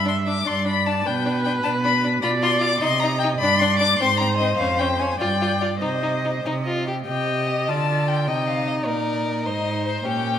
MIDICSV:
0, 0, Header, 1, 5, 480
1, 0, Start_track
1, 0, Key_signature, -3, "minor"
1, 0, Tempo, 391901
1, 1301, Time_signature, 6, 3, 24, 8
1, 5619, Tempo, 413223
1, 8979, Tempo, 394737
1, 12516, End_track
2, 0, Start_track
2, 0, Title_t, "Violin"
2, 0, Program_c, 0, 40
2, 101, Note_on_c, 0, 84, 66
2, 196, Note_off_c, 0, 84, 0
2, 334, Note_on_c, 0, 86, 70
2, 578, Note_on_c, 0, 84, 78
2, 597, Note_off_c, 0, 86, 0
2, 819, Note_off_c, 0, 84, 0
2, 825, Note_on_c, 0, 83, 70
2, 1058, Note_on_c, 0, 81, 72
2, 1077, Note_off_c, 0, 83, 0
2, 1304, Note_on_c, 0, 79, 73
2, 1322, Note_off_c, 0, 81, 0
2, 1758, Note_off_c, 0, 79, 0
2, 1766, Note_on_c, 0, 79, 73
2, 1863, Note_off_c, 0, 79, 0
2, 1999, Note_on_c, 0, 81, 81
2, 2097, Note_off_c, 0, 81, 0
2, 2255, Note_on_c, 0, 83, 80
2, 2490, Note_off_c, 0, 83, 0
2, 2725, Note_on_c, 0, 83, 83
2, 2823, Note_off_c, 0, 83, 0
2, 2973, Note_on_c, 0, 84, 84
2, 3188, Note_off_c, 0, 84, 0
2, 3195, Note_on_c, 0, 86, 91
2, 3427, Note_off_c, 0, 86, 0
2, 3434, Note_on_c, 0, 84, 88
2, 3675, Note_on_c, 0, 82, 96
2, 3694, Note_off_c, 0, 84, 0
2, 3907, Note_off_c, 0, 82, 0
2, 3915, Note_on_c, 0, 79, 89
2, 4013, Note_off_c, 0, 79, 0
2, 4145, Note_on_c, 0, 83, 100
2, 4401, Note_on_c, 0, 84, 96
2, 4419, Note_off_c, 0, 83, 0
2, 4636, Note_off_c, 0, 84, 0
2, 4644, Note_on_c, 0, 86, 91
2, 4878, Note_off_c, 0, 86, 0
2, 4886, Note_on_c, 0, 84, 90
2, 5115, Note_on_c, 0, 82, 89
2, 5133, Note_off_c, 0, 84, 0
2, 5350, Note_off_c, 0, 82, 0
2, 5357, Note_on_c, 0, 75, 90
2, 5601, Note_off_c, 0, 75, 0
2, 5608, Note_on_c, 0, 77, 92
2, 5853, Note_on_c, 0, 79, 81
2, 5870, Note_off_c, 0, 77, 0
2, 6090, Note_on_c, 0, 80, 77
2, 6107, Note_off_c, 0, 79, 0
2, 6320, Note_off_c, 0, 80, 0
2, 6327, Note_on_c, 0, 79, 79
2, 6806, Note_on_c, 0, 74, 68
2, 6823, Note_off_c, 0, 79, 0
2, 7026, Note_off_c, 0, 74, 0
2, 7033, Note_on_c, 0, 72, 60
2, 7761, Note_off_c, 0, 72, 0
2, 8498, Note_on_c, 0, 79, 63
2, 8971, Note_on_c, 0, 75, 65
2, 8989, Note_off_c, 0, 79, 0
2, 9217, Note_on_c, 0, 81, 74
2, 9236, Note_off_c, 0, 75, 0
2, 9711, Note_on_c, 0, 79, 63
2, 9729, Note_off_c, 0, 81, 0
2, 10180, Note_on_c, 0, 77, 63
2, 10199, Note_off_c, 0, 79, 0
2, 10424, Note_off_c, 0, 77, 0
2, 10430, Note_on_c, 0, 75, 60
2, 10525, Note_off_c, 0, 75, 0
2, 10669, Note_on_c, 0, 74, 64
2, 11373, Note_off_c, 0, 74, 0
2, 11381, Note_on_c, 0, 75, 66
2, 11853, Note_off_c, 0, 75, 0
2, 11868, Note_on_c, 0, 72, 59
2, 12101, Note_off_c, 0, 72, 0
2, 12110, Note_on_c, 0, 79, 71
2, 12516, Note_off_c, 0, 79, 0
2, 12516, End_track
3, 0, Start_track
3, 0, Title_t, "Viola"
3, 0, Program_c, 1, 41
3, 0, Note_on_c, 1, 76, 61
3, 574, Note_off_c, 1, 76, 0
3, 581, Note_on_c, 1, 74, 52
3, 1296, Note_on_c, 1, 71, 68
3, 1314, Note_off_c, 1, 74, 0
3, 2728, Note_off_c, 1, 71, 0
3, 2736, Note_on_c, 1, 74, 77
3, 3455, Note_on_c, 1, 75, 69
3, 3474, Note_off_c, 1, 74, 0
3, 4168, Note_off_c, 1, 75, 0
3, 4175, Note_on_c, 1, 74, 72
3, 4903, Note_on_c, 1, 72, 72
3, 4922, Note_off_c, 1, 74, 0
3, 6327, Note_off_c, 1, 72, 0
3, 6334, Note_on_c, 1, 74, 59
3, 7039, Note_off_c, 1, 74, 0
3, 7046, Note_on_c, 1, 75, 55
3, 8123, Note_off_c, 1, 75, 0
3, 8510, Note_on_c, 1, 67, 41
3, 9227, Note_on_c, 1, 65, 42
3, 9245, Note_off_c, 1, 67, 0
3, 9950, Note_on_c, 1, 63, 48
3, 9968, Note_off_c, 1, 65, 0
3, 11379, Note_off_c, 1, 63, 0
3, 11387, Note_on_c, 1, 63, 50
3, 12102, Note_on_c, 1, 61, 43
3, 12120, Note_off_c, 1, 63, 0
3, 12516, Note_off_c, 1, 61, 0
3, 12516, End_track
4, 0, Start_track
4, 0, Title_t, "Violin"
4, 0, Program_c, 2, 40
4, 65, Note_on_c, 2, 62, 43
4, 163, Note_off_c, 2, 62, 0
4, 328, Note_on_c, 2, 62, 38
4, 426, Note_off_c, 2, 62, 0
4, 548, Note_on_c, 2, 62, 50
4, 646, Note_off_c, 2, 62, 0
4, 796, Note_on_c, 2, 62, 49
4, 894, Note_off_c, 2, 62, 0
4, 1057, Note_on_c, 2, 62, 41
4, 1153, Note_off_c, 2, 62, 0
4, 1297, Note_on_c, 2, 62, 52
4, 1393, Note_off_c, 2, 62, 0
4, 1533, Note_on_c, 2, 62, 54
4, 1629, Note_off_c, 2, 62, 0
4, 1786, Note_on_c, 2, 62, 45
4, 1879, Note_off_c, 2, 62, 0
4, 2012, Note_on_c, 2, 62, 51
4, 2108, Note_off_c, 2, 62, 0
4, 2259, Note_on_c, 2, 62, 49
4, 2355, Note_off_c, 2, 62, 0
4, 2493, Note_on_c, 2, 62, 42
4, 2590, Note_off_c, 2, 62, 0
4, 2724, Note_on_c, 2, 65, 63
4, 2822, Note_off_c, 2, 65, 0
4, 2965, Note_on_c, 2, 65, 54
4, 3062, Note_off_c, 2, 65, 0
4, 3192, Note_on_c, 2, 65, 50
4, 3290, Note_off_c, 2, 65, 0
4, 3438, Note_on_c, 2, 63, 60
4, 3536, Note_off_c, 2, 63, 0
4, 3713, Note_on_c, 2, 63, 54
4, 3805, Note_off_c, 2, 63, 0
4, 3962, Note_on_c, 2, 63, 54
4, 4052, Note_off_c, 2, 63, 0
4, 4199, Note_on_c, 2, 62, 69
4, 4291, Note_off_c, 2, 62, 0
4, 4422, Note_on_c, 2, 62, 58
4, 4517, Note_off_c, 2, 62, 0
4, 4661, Note_on_c, 2, 62, 50
4, 4756, Note_off_c, 2, 62, 0
4, 4911, Note_on_c, 2, 60, 60
4, 5004, Note_off_c, 2, 60, 0
4, 5146, Note_on_c, 2, 60, 51
4, 5240, Note_off_c, 2, 60, 0
4, 5400, Note_on_c, 2, 60, 44
4, 5492, Note_off_c, 2, 60, 0
4, 5627, Note_on_c, 2, 61, 56
4, 5719, Note_off_c, 2, 61, 0
4, 5864, Note_on_c, 2, 61, 59
4, 5956, Note_off_c, 2, 61, 0
4, 6108, Note_on_c, 2, 61, 50
4, 6200, Note_off_c, 2, 61, 0
4, 6340, Note_on_c, 2, 65, 54
4, 6433, Note_off_c, 2, 65, 0
4, 6579, Note_on_c, 2, 65, 47
4, 6672, Note_off_c, 2, 65, 0
4, 6810, Note_on_c, 2, 65, 43
4, 6903, Note_off_c, 2, 65, 0
4, 7040, Note_on_c, 2, 63, 42
4, 7133, Note_off_c, 2, 63, 0
4, 7290, Note_on_c, 2, 63, 47
4, 7383, Note_off_c, 2, 63, 0
4, 7549, Note_on_c, 2, 63, 38
4, 7642, Note_off_c, 2, 63, 0
4, 7787, Note_on_c, 2, 63, 58
4, 7880, Note_off_c, 2, 63, 0
4, 8028, Note_on_c, 2, 65, 49
4, 8266, Note_off_c, 2, 65, 0
4, 8275, Note_on_c, 2, 67, 43
4, 8368, Note_off_c, 2, 67, 0
4, 8508, Note_on_c, 2, 75, 47
4, 9239, Note_on_c, 2, 74, 46
4, 9257, Note_off_c, 2, 75, 0
4, 9952, Note_on_c, 2, 75, 45
4, 9971, Note_off_c, 2, 74, 0
4, 10664, Note_on_c, 2, 70, 49
4, 10682, Note_off_c, 2, 75, 0
4, 11391, Note_on_c, 2, 72, 49
4, 11409, Note_off_c, 2, 70, 0
4, 12106, Note_on_c, 2, 67, 50
4, 12124, Note_off_c, 2, 72, 0
4, 12516, Note_off_c, 2, 67, 0
4, 12516, End_track
5, 0, Start_track
5, 0, Title_t, "Cello"
5, 0, Program_c, 3, 42
5, 0, Note_on_c, 3, 43, 58
5, 492, Note_off_c, 3, 43, 0
5, 572, Note_on_c, 3, 43, 51
5, 1212, Note_off_c, 3, 43, 0
5, 1298, Note_on_c, 3, 47, 61
5, 1928, Note_off_c, 3, 47, 0
5, 2012, Note_on_c, 3, 47, 61
5, 2649, Note_off_c, 3, 47, 0
5, 2736, Note_on_c, 3, 47, 66
5, 3369, Note_off_c, 3, 47, 0
5, 3453, Note_on_c, 3, 48, 66
5, 4088, Note_off_c, 3, 48, 0
5, 4169, Note_on_c, 3, 43, 67
5, 4809, Note_off_c, 3, 43, 0
5, 4889, Note_on_c, 3, 44, 66
5, 5530, Note_off_c, 3, 44, 0
5, 5620, Note_on_c, 3, 41, 69
5, 6244, Note_off_c, 3, 41, 0
5, 6329, Note_on_c, 3, 43, 53
5, 6967, Note_off_c, 3, 43, 0
5, 7045, Note_on_c, 3, 48, 52
5, 7696, Note_off_c, 3, 48, 0
5, 7779, Note_on_c, 3, 48, 52
5, 8422, Note_off_c, 3, 48, 0
5, 8507, Note_on_c, 3, 48, 50
5, 9221, Note_on_c, 3, 50, 49
5, 9240, Note_off_c, 3, 48, 0
5, 9940, Note_on_c, 3, 48, 51
5, 9959, Note_off_c, 3, 50, 0
5, 10661, Note_on_c, 3, 46, 43
5, 10680, Note_off_c, 3, 48, 0
5, 11387, Note_on_c, 3, 44, 48
5, 11405, Note_off_c, 3, 46, 0
5, 12085, Note_off_c, 3, 44, 0
5, 12092, Note_on_c, 3, 46, 51
5, 12516, Note_off_c, 3, 46, 0
5, 12516, End_track
0, 0, End_of_file